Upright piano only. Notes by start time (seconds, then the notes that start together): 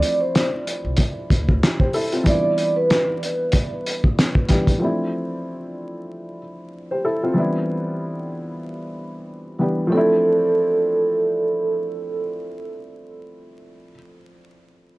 Already playing: F3 A3 C4 D4 E4
1.80 G4 C5
1.94 E4 A4
2.13 C4 F4
2.23 E3 G3 B3 D4
2.29 E4
4.48 E3 G3 B3 D4 G4
4.79 F3 A3 C4 D4
4.84 E4
6.91 G4 C5
7.05 E4 A4
7.23 C4 F4
7.34 E3 G3 B3 D4
7.39 E4
9.59 E3 G3 B3 D4 G4
9.87 F3 A3
9.92 C4 D4
9.97 E4